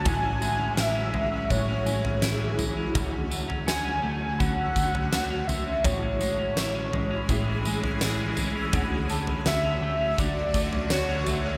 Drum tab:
TB |x-x-x---x-x-x-x-|x-x-x---x-x-x-x-|x-x-x---x-x-x-x-|x-x-x---x-x-x-x-|
SD |----o-------o---|----o-------o---|----o-------o---|----o-------o---|
FT |o-----o-o--o--o-|o--o----o--o--o-|o-----o-o--o--o-|o--o----o--o--o-|
BD |o-------o-------|o-------o-o-----|o-------o-------|o-------o-o-----|